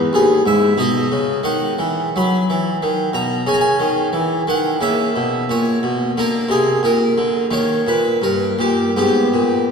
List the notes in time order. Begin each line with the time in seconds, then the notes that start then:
Already playing: D#4
0.13 D#2 G#4
0.46 G#2 E5
0.78 B2 D#4 D#5
1.12 C#3
1.44 D#3 F#5
1.79 E3
2.16 F#3 B5
2.50 E3
2.83 D#3
3.13 B2 A#5
3.47 C#3 C#4 G#5
3.54 A#5
3.61 G#5
3.80 D#3
4.13 E3
4.47 D#3 F#5
4.81 C#3 A#3 E5
5.16 B2
5.50 A#2 C#5
5.83 B2
6.17 D3 A#3 A#4
6.49 C3 G#4
6.83 A#2 A#4
7.18 D3
7.51 D#3 A#3 C#5
7.87 A#2 B4
8.22 G2 A#4
8.59 A#2 G4
8.96 G#2 B3 G4
9.34 A#2